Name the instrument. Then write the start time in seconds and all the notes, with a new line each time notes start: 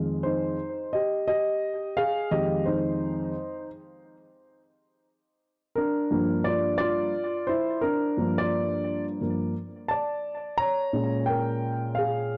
grand piano
Already playing: F2 D#3 G#3
0.23 D#4 C5
0.93 G4 D#5
1.28 G4 D#5
1.97 G#4 F5
2.31 F2 D#3 G#3 G4 D#5
2.65 D#4 C5
5.75 D4 A#4
6.11 G2 F3 A#3
6.44 F4 D5
6.78 F4 D5
7.47 E4 C5
7.81 D4 A#4
8.17 G2 F3 A#3
8.38 F4 D5
9.21 G2 F3 A#3
9.88 D5 A5
10.58 C#5 A#5
10.93 A#2 G#3 C#4
11.26 A#4 G5
11.95 G#4 F5